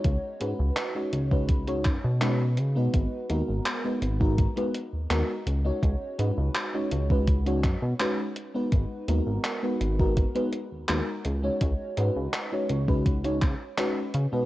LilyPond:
<<
  \new Staff \with { instrumentName = "FM electric piano" } { \time 4/4 \key cis \dorian \tempo 4 = 83 <gis cis' dis' fis' cis''>8 <gis cis' dis' fis' b'>8. <gis cis' dis' fis' cis''>8 <gis cis' dis' fis' b'>16 r16 <gis cis' dis' fis' cis''>16 r8 <gis cis' dis' fis' b'>16 r8 <gis b dis' fis' b'>16~ | <gis b dis' fis' b'>8 <gis b dis' fis' ais'>8. <gis b dis' fis' b'>8 <gis b dis' fis' ais'>16 r16 <gis b dis' fis' b'>16 r8 <gis b dis' fis' ais'>16 r8 <gis cis' dis' fis' cis''>16~ | <gis cis' dis' fis' cis''>8 <gis cis' dis' fis' b'>8. <gis cis' dis' fis' cis''>8 <gis cis' dis' fis' b'>16 r16 <gis cis' dis' fis' cis''>16 r8 <gis cis' dis' fis' b'>16 r8 <gis b dis' fis' b'>16~ | <gis b dis' fis' b'>8 <gis b dis' fis' ais'>8. <gis b dis' fis' b'>8 <gis b dis' fis' ais'>16 r16 <gis b dis' fis' b'>16 r8 <gis b dis' fis' ais'>16 r8 <gis cis' dis' fis' cis''>16~ |
<gis cis' dis' fis' cis''>8 <gis cis' dis' fis' b'>8. <gis cis' dis' fis' cis''>8 <gis cis' dis' fis' b'>16 r16 <gis cis' dis' fis' cis''>16 r8 <gis cis' dis' fis' b'>16 r8 <gis b dis' fis' b'>16 | }
  \new Staff \with { instrumentName = "Analog synth bass" } { \clef bass \time 4/4 \key cis \dorian cis,16 r16 gis,16 cis,16 r8 cis,4 fis,16 b,8. cis16 b,16 | gis,,16 r16 dis,16 gis,,16 r8 gis,,8 r8. dis,16 dis,16 r16 cis,16 r16 | cis,16 r16 gis,16 cis,16 r8 cis,4 fis,16 b,16 r4 | gis,,16 r16 dis,16 gis,,16 r8 gis,,8 r8. dis,16 dis,16 r16 cis,16 r16 |
cis,16 r16 gis,16 cis,16 r8 cis,4 cis16 r8. cis16 b,16 | }
  \new DrumStaff \with { instrumentName = "Drums" } \drummode { \time 4/4 <hh bd>8 hh8 <hc hh>8 hh16 bd16 <hh bd>16 hh16 <hc hh bd>8 <hc hh>8 hh8 | <hh bd>8 hh8 <hc hh>8 hh16 bd16 <hh bd>16 hh16 hh8 <hc hh>8 hh8 | <hh bd>8 hh8 <hc hh>8 hh16 bd16 <hh bd>16 hh16 <hc hh bd>8 <hc hh>8 hh8 | <hh bd>8 hh8 <hc hh>8 hh16 bd16 <hh bd>16 hh16 hh8 <hc hh>8 hh8 |
<hh bd>8 hh8 <hc hh>8 hh16 bd16 <hh bd>16 hh16 <hc hh bd>8 <hc hh>8 hh8 | }
>>